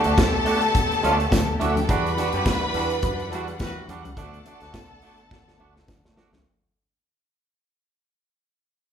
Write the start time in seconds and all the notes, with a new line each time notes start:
Already playing: D3 A3 B3 G4 A4 A5
0.04 D2 A3 D4 F#4, closed hi-hat
0.18 B1, kick, snare, tambourine, high conga
0.33 muted clean electric guitar stroke
0.45 A3 D4 F#4, open hi-hat
0.62 muted clean electric guitar stroke, closed hi-hat
0.75 muted clean electric guitar stroke, kick, closed hi-hat, muted conga
0.91 muted clean electric guitar stroke, closed hi-hat
1.03 D2 A3 D4 F#4, closed hi-hat, muted conga
1.18 muted clean electric guitar stroke, closed hi-hat
1.31 D2, muted clean electric guitar stroke, kick, snare, tambourine, high conga
1.48 muted clean electric guitar stroke
1.60 D2 A3 D4 E4 F#4 E5, closed hi-hat, high conga
1.69 F#4 F#5
1.76 G4 G5, muted clean electric guitar stroke, closed hi-hat, high conga
1.84 A4 A5
1.89 E2 E3 G3 D4 F#4 B4 F#5 B5, kick, closed hi-hat, muted conga
2.07 closed hi-hat
2.17 G3 D4 F#4 B4, closed hi-hat, muted conga
2.32 F#2 D3 G3 B3 D4 F#4 G4, closed hi-hat
2.46 kick, snare, tambourine, high conga
2.63 muted clean electric guitar stroke
2.74 E2 G3 D4 F#4, open hi-hat
2.90 muted clean electric guitar stroke, closed hi-hat
3.03 F#2, muted clean electric guitar stroke, kick, closed hi-hat, muted conga
3.20 muted clean electric guitar stroke, closed hi-hat
3.31 E2 G3 A3 D4 F#4 A4, closed hi-hat, muted conga
3.35 F#4
3.48 muted clean electric guitar stroke, closed hi-hat
3.59 E3 G3 F#4 B4, muted clean electric guitar stroke, kick, snare, tambourine, high conga
3.77 muted clean electric guitar stroke
3.88 E2 G3 D4 F#4, closed hi-hat, high conga
4.04 C#2, muted clean electric guitar stroke, closed hi-hat, high conga
4.16 D2 D3 A3 B3 D4 F#4 A4 A5, kick, closed hi-hat, muted conga
4.34 closed hi-hat
4.46 A3 D4 F#4, closed hi-hat, muted conga
4.61 D2 A3 D4 F#4, snare, closed hi-hat
4.74 B1, kick, snare, tambourine, high conga
4.89 muted clean electric guitar stroke
5.02 A3 D4 F#4, open hi-hat
5.18 muted clean electric guitar stroke, closed hi-hat
5.31 muted clean electric guitar stroke, kick, snare, muted conga
5.47 muted clean electric guitar stroke, snare
5.59 D2 A3 D4 F#4, muted conga
5.75 muted clean electric guitar stroke, snare
5.88 D3, muted clean electric guitar stroke, kick, snare, tambourine, high conga
6.04 D2, muted clean electric guitar stroke, snare
6.16 A3 D4 F#4, snare, high conga
6.32 C#2, muted clean electric guitar stroke, snare, high conga